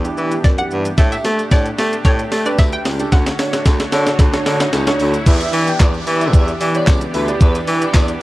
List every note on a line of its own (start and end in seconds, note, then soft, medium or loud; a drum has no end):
0.00 0.94 E3 medium
0.00 0.94 B3 medium
0.00 0.94 D4 medium
0.00 0.94 G4 medium
0.00 riser medium
0.05 0.38 D4 loud
0.05 0.38 E4 medium
0.05 0.38 G4 loud
0.05 closed hi-hat soft
0.05 shaker medium
0.18 0.35 E3 loud
0.18 shaker medium
0.32 closed hi-hat medium
0.32 shaker medium
0.44 0.62 F#2 medium
0.44 0.51 D5 medium
0.44 kick loud
0.44 snare medium
0.44 closed hi-hat medium
0.44 shaker medium
0.58 0.83 D4 medium
0.58 0.84 E4 medium
0.58 0.84 G4 medium
0.58 0.95 F#5 medium
0.58 closed hi-hat medium
0.58 shaker medium
0.71 0.89 G2 loud
0.71 shaker medium
0.85 closed hi-hat medium
0.85 shaker medium
0.98 1.15 A2 loud
0.98 3.10 A3 medium
0.98 1.32 D4 medium
0.98 3.10 D4 medium
0.98 3.10 G4 loud
0.98 1.32 G4 medium
0.98 1.32 A4 medium
0.98 1.11 E5 medium
0.98 kick loud
0.98 snare medium
0.98 closed hi-hat medium
0.98 tambourine soft
0.98 shaker medium
1.12 1.49 E5 medium
1.12 closed hi-hat medium
1.12 tambourine soft
1.12 shaker medium
1.25 1.42 A3 loud
1.25 snare medium
1.25 open hi-hat medium
1.25 tambourine soft
1.25 shaker medium
1.39 closed hi-hat medium
1.39 tambourine soft
1.39 shaker medium
1.51 1.69 A2 loud
1.51 1.85 D4 medium
1.51 1.85 G4 medium
1.51 1.86 A4 medium
1.51 2.01 D5 medium
1.51 kick loud
1.51 snare medium
1.51 closed hi-hat medium
1.51 tambourine medium
1.51 shaker medium
1.66 closed hi-hat medium
1.66 shaker medium
1.78 1.96 A3 loud
1.78 snare medium
1.78 open hi-hat medium
1.78 tambourine soft
1.78 shaker medium
1.93 closed hi-hat medium
1.93 shaker medium
2.05 2.22 A2 loud
2.05 2.30 D4 medium
2.05 2.30 G4 medium
2.05 2.30 A4 medium
2.05 2.47 C#5 medium
2.05 kick loud
2.05 snare medium
2.05 closed hi-hat medium
2.05 shaker medium
2.19 closed hi-hat soft
2.19 shaker medium
2.32 2.49 A3 loud
2.32 snare medium
2.32 open hi-hat medium
2.32 tambourine medium
2.32 shaker medium
2.46 2.79 D4 medium
2.46 2.79 G4 medium
2.46 2.79 B4 loud
2.46 2.52 D5 medium
2.46 closed hi-hat medium
2.46 tambourine soft
2.46 shaker medium
2.59 2.76 D2 medium
2.59 2.72 E5 loud
2.59 kick loud
2.59 snare medium
2.59 closed hi-hat medium
2.59 tambourine medium
2.59 shaker medium
2.73 3.13 G5 loud
2.73 closed hi-hat medium
2.73 shaker medium
2.85 3.03 C#2 medium
2.85 snare loud
2.85 open hi-hat medium
2.85 tambourine soft
2.85 shaker medium
2.99 3.12 D4 medium
2.99 3.12 G4 medium
2.99 3.12 A4 medium
2.99 closed hi-hat medium
2.99 tambourine soft
2.99 shaker medium
3.12 3.30 D2 loud
3.12 5.24 D3 medium
3.12 5.24 A3 medium
3.12 5.24 F#4 loud
3.12 5.24 C#5 medium
3.12 4.15 F#5 loud
3.12 kick loud
3.12 snare loud
3.12 closed hi-hat medium
3.12 tambourine soft
3.12 shaker medium
3.26 snare loud
3.26 closed hi-hat medium
3.26 tambourine soft
3.26 shaker medium
3.39 3.73 D4 medium
3.39 3.73 F#4 medium
3.39 3.73 C#5 medium
3.39 snare loud
3.39 open hi-hat medium
3.39 tambourine soft
3.39 shaker medium
3.53 snare loud
3.53 closed hi-hat medium
3.53 shaker medium
3.66 3.83 D2 loud
3.66 kick loud
3.66 snare loud
3.66 closed hi-hat medium
3.66 tambourine loud
3.66 shaker medium
3.80 snare loud
3.80 closed hi-hat medium
3.80 shaker medium
3.92 4.10 D3 loud
3.92 4.18 D4 medium
3.92 4.18 F#4 medium
3.92 4.18 C#5 loud
3.92 snare loud
3.92 open hi-hat medium
3.92 tambourine soft
3.92 shaker medium
4.07 snare loud
4.07 closed hi-hat medium
4.07 shaker medium
4.19 4.37 D2 loud
4.19 kick loud
4.19 snare loud
4.19 closed hi-hat medium
4.19 shaker medium
4.33 4.67 D4 loud
4.33 4.67 F#4 medium
4.33 4.67 C#5 loud
4.33 snare loud
4.33 closed hi-hat medium
4.33 shaker medium
4.46 4.64 D3 medium
4.46 snare loud
4.46 open hi-hat medium
4.46 tambourine medium
4.46 shaker medium
4.60 snare loud
4.60 closed hi-hat medium
4.60 shaker medium
4.73 4.90 C#2 loud
4.73 snare loud
4.73 closed hi-hat medium
4.73 tambourine medium
4.73 shaker medium
4.87 5.12 D4 medium
4.87 5.12 F#4 medium
4.87 5.12 C#5 loud
4.87 snare loud
4.87 closed hi-hat medium
4.87 shaker medium
5.00 5.17 D2 loud
5.00 open hi-hat medium
5.00 tambourine soft
5.00 shaker medium
5.14 closed hi-hat medium
5.14 tambourine soft
5.14 shaker medium
5.26 5.44 E2 loud
5.26 8.22 E3 medium
5.26 8.22 B3 medium
5.26 8.22 D4 medium
5.26 5.35 E4 medium
5.26 8.22 G4 loud
5.26 5.35 G4 medium
5.26 5.35 B4 medium
5.26 5.36 D5 medium
5.26 5.48 E5 loud
5.26 kick loud
5.26 closed hi-hat medium
5.26 crash loud
5.26 tambourine medium
5.26 downlifter medium
5.26 shaker medium
5.41 5.82 E4 medium
5.41 5.82 G4 medium
5.41 5.82 B4 medium
5.41 5.82 D5 medium
5.41 closed hi-hat medium
5.41 tambourine medium
5.41 shaker medium
5.53 5.71 E3 loud
5.53 open hi-hat medium
5.53 tambourine soft
5.53 shaker medium
5.67 5.78 G5 medium
5.67 closed hi-hat medium
5.67 shaker medium
5.80 5.97 E2 loud
5.80 5.92 D5 medium
5.80 kick loud
5.80 snare loud
5.80 clap loud
5.80 closed hi-hat medium
5.80 tambourine medium
5.80 shaker medium
5.94 closed hi-hat medium
5.94 shaker medium
6.07 6.35 E3 loud
6.07 6.24 E4 medium
6.07 6.24 G4 medium
6.07 6.24 B4 medium
6.07 6.24 D5 medium
6.07 open hi-hat medium
6.07 tambourine soft
6.07 shaker medium
6.21 6.31 E5 medium
6.21 closed hi-hat medium
6.21 tambourine soft
6.21 shaker medium
6.33 6.51 E2 loud
6.33 6.51 E4 medium
6.33 6.51 G4 medium
6.33 6.51 B4 medium
6.33 6.51 D5 medium
6.33 6.45 E5 medium
6.33 kick loud
6.33 closed hi-hat medium
6.33 shaker medium
6.48 closed hi-hat medium
6.48 shaker medium
6.60 6.78 E3 loud
6.60 6.69 E4 medium
6.60 6.69 G4 medium
6.60 6.69 B4 medium
6.60 6.69 D5 medium
6.60 open hi-hat medium
6.60 tambourine medium
6.60 shaker medium
6.74 7.00 E4 medium
6.74 7.00 G4 medium
6.74 7.00 B4 medium
6.74 7.00 C#5 medium
6.74 6.85 D5 medium
6.74 closed hi-hat medium
6.74 shaker medium
6.87 7.05 C#2 loud
6.87 6.99 D5 medium
6.87 kick loud
6.87 snare medium
6.87 clap loud
6.87 closed hi-hat medium
6.87 tambourine medium
6.87 shaker medium
7.01 closed hi-hat medium
7.01 shaker medium
7.14 7.31 D2 loud
7.14 7.23 E4 medium
7.14 7.23 G4 medium
7.14 7.26 B4 medium
7.14 7.23 B4 medium
7.14 7.23 E5 medium
7.14 open hi-hat medium
7.14 tambourine soft
7.14 shaker medium
7.28 7.87 E4 medium
7.28 7.87 G4 medium
7.28 7.87 B4 medium
7.28 7.87 D5 medium
7.28 closed hi-hat medium
7.28 tambourine soft
7.28 shaker medium
7.41 7.58 E2 loud
7.41 7.52 B4 loud
7.41 kick loud
7.41 closed hi-hat medium
7.41 tambourine medium
7.41 shaker medium
7.55 closed hi-hat medium
7.55 tambourine medium
7.55 shaker medium
7.67 7.85 E3 loud
7.67 open hi-hat medium
7.67 tambourine medium
7.67 shaker medium
7.82 7.92 D5 medium
7.82 closed hi-hat medium
7.82 shaker medium
7.94 8.12 E2 loud
7.94 8.06 D5 medium
7.94 kick loud
7.94 snare loud
7.94 clap loud
7.94 closed hi-hat medium
7.94 tambourine loud
7.94 shaker medium
8.08 closed hi-hat medium
8.08 shaker medium